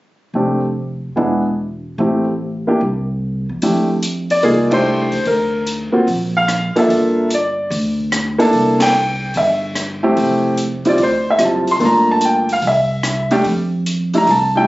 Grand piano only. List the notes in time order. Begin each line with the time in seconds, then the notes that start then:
0.35 A3 C4 D4 G4
1.16 G#3 B3 D4 E4
1.99 A3 C4 E4 G4
2.67 A#3 D4 E4 G4
3.63 A3 D4 E4 G4
4.31 D5
4.43 A#3 D#4 F4 G#4
4.71 A3 D4 E4 G4 C5
5.27 A#4
5.92 A#3 C4 F4 F#4
6.37 F5
6.76 A#3 D4 F4 A4 E5
7.34 D5
8.38 A#3 D4 E4 A4 A5
8.82 G5
9.37 E5
10.03 A3 C4 E4 G4
10.85 G3 C4 E4 F4 D5
11.03 C5
11.30 E5
11.39 G3 C4 E4 F4
11.45 A5
11.71 C6
11.80 A3 A#3 D4 F4
11.85 A#5
12.11 A5
12.25 G5
12.53 F5
12.67 E5
13.31 G3 A3 D4 G4
14.14 G3 A3 D4 E4 A#5
14.31 A5
14.55 G3 A3 D4 E4 G5